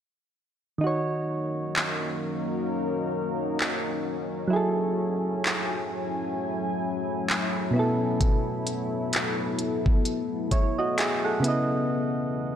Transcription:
0.78 D#3 F#3 A#3 C#4 D#4 A#4
0.84 F#4 C#5
1.76 clap
3.60 clap
4.47 F#3 A3 E4 G#5
4.53 G#4 A4
5.45 clap
7.30 clap
7.71 B2 B3 A4
7.76 E4 A4
8.21 kick, closed hi-hat
8.67 closed hi-hat
9.13 clap, closed hi-hat
9.59 closed hi-hat
9.86 kick
10.05 closed hi-hat
10.51 E4 C#5, kick, closed hi-hat
10.78 F#4 D#5
10.98 G#4 E5, clap, closed hi-hat
11.24 A4 F#5
11.40 C#3 B3
11.44 E3 C#4 E4 G#4 D#5, closed hi-hat
11.48 D#5

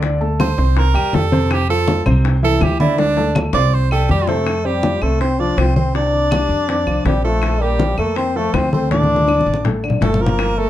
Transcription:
Already playing: D2
0.02 D3 D4 D5, high bongo, high conga
0.21 A3 A4 A5, high bongo, high conga
0.40 C5, high bongo, high conga, claves
0.58 C2 C4 C5 C6, high bongo, high conga
0.77 A#4, high bongo, high conga
0.94 E2 G3 G4 G5, high conga, claves
1.13 F2 A4, high bongo, low bongo, high conga
1.32 C3 C4 C5, high bongo, high conga
1.51 G4, high bongo, high conga, claves
1.69 F3 F4 A4 F5, high bongo, high conga
1.88 high bongo, high conga
2.05 C2 C3 C4 C5, high bongo, high conga, low conga, claves
2.24 high bongo, high conga
2.42 E3 E4 A4 E5, high conga
2.61 D2 G4, high bongo, low bongo, high conga, claves
2.80 D3 D4 E4 D5, high bongo, high conga
2.98 D3 D4 D5, high bongo, high conga
3.17 A3 A4 A5, high bongo, high conga
3.35 low bongo, high conga, claves
3.53 C2 C4 C5 D5 C6, low bongo, high conga
3.73 C5, high conga
3.91 G3 G4 A4 G5, high conga, claves
4.09 F2 G3 G4, high conga
4.27 C3 A3 C4 A4 C5, low bongo
4.46 high bongo, high conga, claves
4.65 G3 C4 G4 C5, high conga
4.83 F3 F4, high bongo, high conga
5.02 C2 A3 C4 A4 C5, high conga, claves
5.20 C4 C5, high bongo, high conga
5.39 F3 D4 F4 D5, high conga
5.57 C2 C4 C5, high bongo, low bongo, high conga, claves
5.76 C4 C5, high conga
5.95 C3 C4 D4 D5, high bongo, high conga
6.13 high bongo, high conga
6.31 G3 G4, high bongo, high conga, claves
6.49 F2, high conga
6.68 C4 C5, high bongo, high conga
6.87 C2 F3 F4, high bongo, high conga, claves
7.05 A#1 G3 C4 G4 C5, high bongo, low bongo, high conga
7.24 F3 A3 F4 A4, high bongo, high conga
7.42 high bongo, high conga, claves
7.61 G3 A#3 G4 A#4, high conga
7.79 F3 F4, high bongo, high conga
7.98 F2 A3 A#3 A4 A#4, high conga, claves
8.16 C4 C5, high bongo, high conga
8.36 F3 A3 F4 A4, high conga
8.54 D2 C4 C5, high bongo, low bongo, high conga, claves
8.72 A3 C4 A4 C5, high conga
8.91 A2 A3 D4 D5, high bongo, high conga
9.03 high conga
9.09 high bongo
9.16 high conga
9.28 D3 D4, high bongo, claves
9.41 high conga
9.46 A1
9.54 high conga
9.65 A3 A4, high bongo, low conga
9.83 D3 D4, high bongo, claves
9.90 low conga
10.01 G1 A3 A4, high bongo, low bongo, low conga
10.14 low conga
10.20 F3 A#3 F4 A#4, high bongo
10.26 low conga
10.39 high bongo, high conga, claves
10.57 A3 A#3 A4 A#4, high conga

